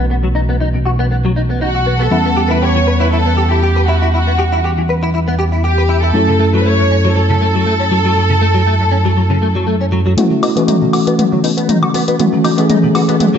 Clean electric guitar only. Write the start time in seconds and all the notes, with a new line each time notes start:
0.10 B3
0.23 F#3
0.35 D#4
0.49 B3
0.60 D#4
0.74 B2
0.86 F#4
0.99 B3
1.11 B3
1.25 F#3
1.36 D#4
1.50 B3
1.61 D#4
1.75 F#4
1.86 B3
2.00 B3
2.11 E4
2.25 B3
2.37 G4
2.50 E4
2.62 G4
2.75 E3
2.87 B4
3.00 E4
3.12 E4
3.26 B3
3.37 G4
3.51 E4
3.63 G4
3.76 B4
3.88 E4
4.02 E4
4.14 E4
4.27 B3
4.39 G4
4.52 E4
4.64 G4
4.78 E3
4.89 B4
5.03 E4
5.14 E4
5.28 B3
5.39 G4
5.52 E4
5.64 G4
5.78 B4
5.89 E4
6.03 E4
6.15 F#3
6.28 C#3
6.40 A3
6.54 F#3
6.66 A3
6.79 F#2
6.91 C#4
7.05 F#3
7.16 F#3
7.30 C#3
7.41 A3
7.55 F#3
7.66 A3
7.80 C#4
7.91 F#3
8.05 F#3
8.16 F#3
8.30 C#3
8.42 A3
8.54 F#3
8.66 A3
8.80 F#2
8.91 C#4
9.05 F#3
9.17 F#3
9.30 C#3
9.42 A3
9.55 F#3
9.67 A3
9.81 C#4
9.92 F#3
10.06 F#3
10.17 B3
10.31 F#3
10.42 D#4
10.56 B3
10.67 D#4
10.82 B2
10.93 F#4
11.07 B3
11.18 B3
11.32 F#3
11.44 D#4
11.57 B3
11.69 D#4
11.83 F#4
11.94 B3
12.08 B3
12.19 B3
12.33 F#3
12.44 D#4
12.58 B3
12.70 D#4
12.83 B2
12.95 F#4
13.09 B3
13.20 B3
13.34 F#3